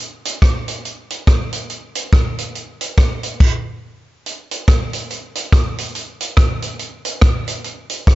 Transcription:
0.00 closed hi-hat
0.25 closed hi-hat
0.42 kick, cross-stick, closed hi-hat
0.68 closed hi-hat
0.85 closed hi-hat
1.10 closed hi-hat
1.27 kick, cross-stick, closed hi-hat
1.53 closed hi-hat
1.70 closed hi-hat
1.95 closed hi-hat
2.13 kick, cross-stick, closed hi-hat
2.38 closed hi-hat
2.55 closed hi-hat
2.81 closed hi-hat
2.97 kick, cross-stick, closed hi-hat
3.23 closed hi-hat
3.40 kick, crash
4.26 closed hi-hat
4.51 closed hi-hat
4.68 kick, cross-stick, closed hi-hat
4.93 closed hi-hat
5.10 closed hi-hat
5.35 closed hi-hat
5.52 kick, cross-stick, closed hi-hat
5.78 closed hi-hat
5.95 closed hi-hat
6.21 closed hi-hat
6.37 kick, cross-stick, closed hi-hat
6.62 closed hi-hat
6.79 closed hi-hat
7.05 closed hi-hat
7.21 kick, cross-stick, closed hi-hat
7.47 closed hi-hat
7.64 closed hi-hat
7.90 closed hi-hat
8.07 kick, cross-stick, closed hi-hat

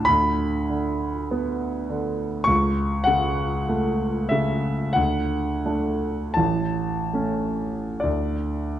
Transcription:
Already playing: A2 D4 A5
0.05 D2 B5
0.70 D3
1.31 B3
1.90 D3
2.44 C#2 C#6
3.04 C#3 F#5
3.69 A3
4.29 C#3 E5
4.93 D2 F#5
5.66 A3 D4
6.34 A1 A5
7.13 A3 C#4
8.00 D2 D5

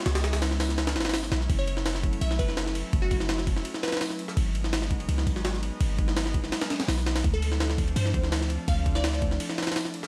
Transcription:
Already playing: G#3 B3 C#4 E4
0.06 C#2, snare, ride
0.15 snare, ride
0.24 snare, ride
0.33 snare, ride
0.42 snare, ride
0.51 snare
0.60 snare, open hi-hat
0.69 snare
0.78 snare, ride
0.87 snare, ride
0.96 G#1, snare, ride
1.00 snare, ride
1.05 snare, ride
1.09 snare, ride
1.14 snare, open hi-hat
1.23 snare
1.32 B1, snare, ride
1.41 snare
1.50 F#1 F#3 A3, kick, ride
1.59 C#5
1.68 C#5, ride
1.77 snare
1.86 snare, ride
1.95 snare
2.03 kick, ride
2.13 ride
2.21 B1 E5, ride
2.31 snare
2.39 F#1 B4, kick, ride
2.48 B4, snare
2.57 snare, ride
2.66 snare
2.75 ride
2.93 F#1, kick, ride
3.02 F#4
3.11 F#4, kick, ride
3.20 snare
3.29 snare, ride
3.38 snare
3.47 kick, ride
3.56 snare
3.65 ride
3.74 snare
3.83 B4, snare, ride
3.88 snare, ride
3.92 B4, snare, ride
3.97 snare, ride
4.01 snare, open hi-hat
4.10 snare
4.19 ride
4.28 snare
4.37 G#1 G#3 B3 D#4, kick, ride
4.55 ride
4.64 snare
4.73 snare, ride
4.82 snare
4.91 kick, ride
5.00 ride
5.09 C#2, ride
5.18 snare
5.27 G#1, kick, ride
5.36 snare
5.45 snare, ride
5.54 snare
5.63 ride
5.80 G#1, kick, ride
5.98 kick, ride
6.08 snare
6.16 snare, ride
6.26 snare
6.34 kick, ride
6.44 snare
6.52 snare, ride
6.61 snare, ride
6.70 snare, ride
6.80 snare, ride
6.88 B1, snare, open hi-hat
6.98 snare
7.06 snare, ride
7.16 snare, ride
7.24 D2 F3 A3 C4 D4, kick, ride
7.34 A4
7.42 A4, ride
7.52 snare
7.60 snare, ride
7.70 snare
7.78 kick, ride
7.88 ride
7.96 G2 C5, ride
8.06 snare
8.14 D2, kick, ride
8.23 snare
8.32 snare, ride
8.41 snare
8.50 ride
8.68 D2 F5, kick, ride
8.86 kick, ride
8.95 D5, snare
9.04 snare, ride
9.13 snare
9.22 kick, ride
9.31 snare
9.40 ride
9.49 snare
9.58 snare, ride
9.62 snare, ride
9.67 snare, ride
9.72 snare, ride
9.76 snare, open hi-hat
9.85 snare
9.94 ride
10.03 snare

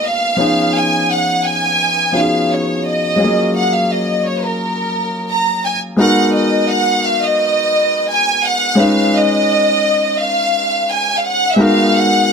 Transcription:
Already playing: G#3 B3 D#4 F#4 A#4
0.04 F5
0.36 F3 B3 C#4 D#4
0.41 G#4
0.75 G#5
1.10 F#5
1.45 G#5
2.12 F3 B3 C#4 D#4 F#4 F5
2.21 G#4
2.51 C#5
2.86 D#5
3.16 F#3 G#3 C#4 F4
3.20 A#3 G#4
3.56 F#5
3.73 F5
3.91 D#5
4.26 C#5
4.43 A#4
5.30 A#5
5.65 G#5
5.96 G#3 B3 D#4 F#4 A#4 F#5
6.35 D#5
6.69 F#5
7.04 F5
7.23 D#5
8.10 G#5
8.44 F#5
8.75 G#3 C#4 D#4 F4
8.80 B4 F5
9.15 D#5
10.19 F5
10.90 G#5
11.17 F5
11.25 F#5
11.53 G#3 E5
11.57 B3 D#4 F#4 A#4 F5
11.96 F#5

